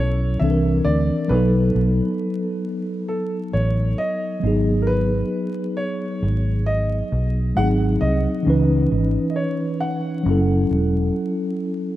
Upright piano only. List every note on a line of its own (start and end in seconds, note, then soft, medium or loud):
0.00 0.37 C#5 loud
0.39 0.86 E5 loud
0.85 1.31 D5 medium
1.29 3.14 B4 loud
3.08 3.55 A4 medium
3.53 3.99 C#5 medium
3.98 4.67 D#5 loud
4.82 4.87 A#4 medium
4.87 5.73 B4 loud
5.77 6.69 C#5 medium
6.66 7.59 D#5 loud
7.57 7.67 F#5 loud
8.01 9.26 D#5 loud
9.30 9.35 D#5 medium
9.36 9.82 C#5 medium
9.81 11.55 F#5 medium